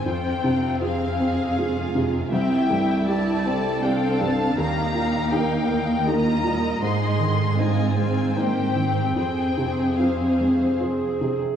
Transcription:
<<
  \new Staff \with { instrumentName = "Violin section" } { \time 3/4 \key f \lydian \tempo 4 = 79 g''4 f''4 r4 | g''4 a''4 g''8 a''8 | bes''4 g''4 bes''4 | c'''4 aes''4 g''4 |
g''4 f''4 r4 | }
  \new Staff \with { instrumentName = "Violin section" } { \time 3/4 \key f \lydian << { c''4 f''2 | e''4 d''4 f''4~ | f''2 ees''4~ | ees''4 ees''8 c''4. |
c''2~ c''8. r16 | } \\ { f'4 aes'2 | g'4 g'8 a'4. | g'4 bes'4 bes'4 | aes'4 f'4 g'4 |
aes'2~ aes'8. r16 | } >> }
  \new Staff \with { instrumentName = "Clarinet" } { \time 3/4 \key f \lydian r2. | r2. | r2. | r2. |
r2 aes'4 | }
  \new Staff \with { instrumentName = "Felt piano" } { \time 3/4 \key f \lydian f,8 c8 <f' aes'>8 c'8 <f' aes'>8 c8 | c,8 g,8 <d' g'>8 c'8 <d' g'>8 g,8 | ees,8 bes,8 <ees' g'>8 bes8 <ees' g'>8 bes,8 | aes,8 ees8 <ees' c''>8 aes8 <ees' c''>8 ees8 |
f,8 c8 <f' c''>8 aes8 <f' c''>8 c8 | }
  \new Staff \with { instrumentName = "Viola section" } { \time 3/4 \key f \lydian << { r2 f'4 | e'2 d'4 | ees'2 f'4 | ees'8 d8 c'2 |
c'2~ c'8. r16 | } \\ { c'2 aes8 aes8 | c'8 a8 g4 c'4 | bes2 bes8 g8 | aes2 bes8 c'8 |
c'2~ c'8. r16 | } >> }
  \new Staff \with { instrumentName = "Cello section" } { \clef bass \time 3/4 \key f \lydian f,2. | c,2. | ees,2. | aes,2. |
f,2~ f,8. r16 | }
>>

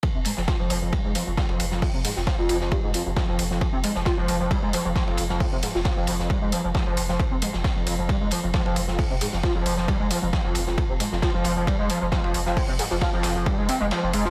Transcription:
<<
  \new Staff \with { instrumentName = "Analog synth lead" } { \clef bass \time 4/4 \key f \minor \tempo 4 = 134 f16 c'16 aes16 f16 f'16 f16 f16 f16 g16 aes16 f16 f16 f16 f16 f16 f16 | f16 c'16 aes16 f16 f'16 f16 f16 f16 g16 aes16 f16 f16 f16 f16 f16 f16 | f16 c'16 aes16 f16 f'16 f16 f16 f16 g16 aes16 f16 f16 f16 f16 f16 f16 | f16 c'16 aes16 f16 f'16 f16 f16 f16 g16 aes16 f16 f16 f16 f16 f16 f16 |
f16 c'16 aes16 f16 f'16 f16 f16 f16 g16 aes16 f16 f16 f16 f16 f16 f16 | f16 c'16 aes16 f16 f'16 f16 f16 f16 g16 aes16 f16 f16 f16 f16 f16 f16 | f16 c'16 aes16 f16 f'16 f16 f16 f16 g16 aes16 f16 f16 f16 f16 f16 f16 | f16 c'16 aes16 f16 f'16 f16 f16 f16 g16 aes16 c'16 aes16 f16 f16 aes16 f'16 | }
  \new Staff \with { instrumentName = "Sub bass" } { \clef bass \time 4/4 \key f \minor r16 f,,16 r16 f,,16 r16 f,,16 f,,16 f,,16 r16 f,,16 r16 f,,16 r16 f,,16 f,,16 f,,16 | r16 f,,16 r16 f,,16 r16 f,,16 f,,16 f,,16 r16 f,,16 r16 f,,16 r16 f,,16 f,,16 f,,16 | r16 f,,16 r16 f,,16 r16 f,,16 f,,16 f,,16 r16 f,,16 r16 f,,16 r16 f,,16 f,,16 f,,16 | r16 f,,16 r16 f,,16 r16 f,,16 f,,16 f,,16 r16 f,,16 r16 f,,16 r16 f,,16 f,,16 f,,16 |
r16 f,,16 r16 f,,16 r16 f,,16 f,,16 f,,16 r16 f,,16 r16 f,,16 r16 f,,16 f,,16 f,,16 | r16 f,,16 r16 f,,16 r16 f,,16 f,,16 f,,16 r16 f,,16 r16 f,,16 r16 f,,16 f,,16 f,,16 | r16 f,,16 r16 f,,16 r16 f,,16 f,,16 f,,16 r16 f,,16 r16 f,,16 r16 f,,16 f,,16 f,,16 | r16 f,,16 r16 f,,16 r16 f,,16 f,,16 f,,16 r16 f,,16 r16 f,,16 r16 f,,16 f,,16 f,,16 | }
  \new DrumStaff \with { instrumentName = "Drums" } \drummode { \time 4/4 <bd cymr>8 <hho cymr>16 sn16 <bd cymr sn>8 <hho cymr>8 <bd cymr>8 <hho cymr>8 <bd cymr sn>16 cymr16 <hho cymr>16 sn16 | <hho bd>8 <hho cymr>16 sn16 <bd cymr sn>8 <hho cymr>16 sn16 <bd cymr>8 <hho cymr>8 <bd cymr sn>8 <hho cymr>16 sn16 | <bd cymr>8 <hho cymr>16 sn16 <bd cymr sn>8 <hho cymr>8 <bd cymr>8 <hho cymr>8 <bd cymr sn>16 cymr16 <hho cymr>16 sn16 | <hho bd>8 <hho cymr>16 sn16 <bd cymr sn>8 <hho cymr>16 sn16 <bd cymr>8 <hho cymr>8 <bd cymr sn>8 <hho cymr>16 sn16 |
<bd cymr>8 <hho cymr>16 sn16 <bd cymr sn>8 <hho cymr>8 <bd cymr>8 <hho cymr>8 <bd cymr sn>16 cymr16 <hho cymr>16 sn16 | <hho bd>8 <hho cymr>16 sn16 <bd cymr sn>8 <hho cymr>16 sn16 <bd cymr>8 <hho cymr>8 <bd cymr sn>8 <hho cymr>16 sn16 | <bd cymr>8 <hho cymr>16 sn16 <bd cymr sn>8 <hho cymr>8 <bd cymr>8 <hho cymr>8 <bd cymr sn>16 cymr16 <hho cymr>16 sn16 | <hho bd>8 <hho cymr>16 sn16 <bd cymr sn>8 <hho cymr sn>8 <bd cymr>8 <hho cymr>8 <cymr sn>8 <hho cymr>16 sn16 | }
>>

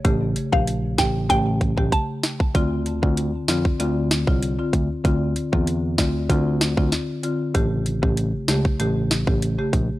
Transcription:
<<
  \new Staff \with { instrumentName = "Synth pluck" } { \time 4/4 \key d \minor \tempo 4 = 96 r8. f''8 r16 g''8 g''8. r16 a''8. r16 | r1 | r1 | r1 | }
  \new Staff \with { instrumentName = "Marimba" } { \time 4/4 \key d \minor <cis a g'>16 r8 <cis a g'>16 r8 <cis a g'>16 r16 <cis a g'>16 r8 <cis a g'>16 r4 | <d c' f'>8. <d c' f'>8. <d c' f'>8 <d c' f'>8. <d c' f'>16 r16 <d c' f'>16 r8 | <d c' f'>8. <d c' f'>8. <d c' f'>8 <d c' f'>8. <d c' f'>16 r8 <d c' f'>16 r16 | <cis a g'>8. <cis a g'>8. <cis a g'>8 <cis a g'>8. <cis a g'>16 r16 <cis a g'>16 r8 | }
  \new Staff \with { instrumentName = "Tine electric piano" } { \clef bass \time 4/4 \key d \minor a,,8 r16 bes,,8. a,,8 a,,8. a,,16 r4 | d,8. d,8 r16 f,16 r16 d,8. c,8 r16 d,16 r16 | d,8 r16 e,8. d,8 d,8. d,16 r4 | a,,8. a,,8 r16 cis,16 r16 a,,8. a,,8 r16 bes,,16 r16 | }
  \new DrumStaff \with { instrumentName = "Drums" } \drummode { \time 4/4 <hh bd>8 hh16 bd16 hh8 <hh bd sn>8 <hh bd>8 <hh bd>16 bd16 <hh bd>8 <hh sn>16 bd16 | <hh bd>8 hh16 bd16 hh8 <hh sn>16 bd16 hh8 <hh sn>16 bd16 hh8 <hh bd>8 | <hh bd>8 hh16 bd16 hh8 <hh bd sn>8 <hh bd>8 <hh sn>16 bd16 <hh sn>8 hh8 | <hh bd>8 hh16 bd16 hh8 <hh sn>16 bd16 hh8 <hh sn>16 bd16 hh8 <hh bd>8 | }
>>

